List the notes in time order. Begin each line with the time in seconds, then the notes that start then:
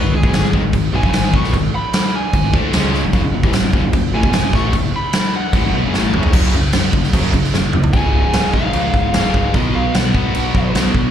Already playing: F#4 B4
0.03 G#1 G#2 D#3
0.14 G#1 G#2 D#3 G#4
0.23 B1 B2 F#3, kick
0.33 G#1 G#2 D#3, snare, crash
0.43 G#1 G#2 D#3
0.53 G#1 G#2 D#3, kick
0.63 G#1 G#2 D#3
0.73 G#1 G#2 D#3, kick, crash
0.93 B1 B2 F#3 G#5
1.03 F#1 F#2 C#3, kick
1.13 G#1 G#2 D#3 G#5, snare, crash
1.23 G#1 G#2 D#3
1.34 B1 B2 F#3 B3 C#6, kick
1.44 snare
1.53 G#1 G#2 D#3, kick, crash
1.75 B5
1.93 snare, crash
2.15 G#5
2.33 G#1 G#2 D#3, kick, crash
2.44 G#1 G#2 D#3
2.53 D2 D3 A3 D4, kick
2.73 C#2 C#3 G#3 C#4, snare, crash
2.94 snare
3.04 F#1 F#2 C#3
3.13 F#1 F#2 C#3, kick, crash
3.24 F#1 F#2 C#3
3.33 F#1 F#2 C#3
3.43 A1 A2 E3, kick
3.53 F#1 F#2 C#3, snare, crash
3.63 F#1 F#2 C#3
3.73 F#1 F#2 C#3, kick
3.84 F#1 F#2 C#3
3.93 F#1 F#2 C#3, kick, crash
4.14 A1 A2 E3 G#5
4.23 E1 E2 B2, kick
4.33 F#1 F#2 C#3 G#5, snare, crash
4.44 F#1 F#2 C#3
4.53 A1 A2 E3 A3 C#6, kick, snare
4.73 F#1 F#2 C#3, kick, crash
4.96 B5
5.13 snare, crash
5.36 F#5
5.53 A1 A2 E3, kick, crash
5.65 F#1 F#2 C#3
5.74 B1 B2 F#3
5.85 F#1 F#2 C#3
5.94 A1 A2 E3 A3, snare
6.14 F#1 F#2 C#3 F#3, mid tom
6.23 floor tom
6.33 F#1 F#2 C#3 F#3, kick, crash
6.53 F#1 F#2 C#3, crash
6.73 F#1 F#2 C#3, snare, crash
6.93 F#1 F#2 C#3, kick, crash
7.04 snare
7.13 F#1 F#2 C#3 F#3, kick, crash
7.33 F#2 C#3, kick, crash
7.44 snare
7.54 F#1 F#2 C#3, snare
7.73 F#1 F#2 C#3, mid tom
7.84 floor tom
7.93 C#1 C#2 G#2 C#3 G#5, kick, crash
8.14 C#1
8.33 C#1, snare, crash
8.54 B1 C#2 G#2 C#3 F5, kick
8.73 C#2, crash
8.94 C#1, kick
9.14 C#1 C#2 G#2 C#3, snare, crash
9.34 C#1, kick
9.54 B1 B2 F#3 B3 D#5, kick, crash
9.75 B1 F5
9.95 B1 F#5, snare, crash
10.14 G#1 B2 F#3 B3, kick
10.35 B1, crash
10.54 B1, kick
10.74 B1 B2 F#3 B3, snare, crash
10.95 B1, kick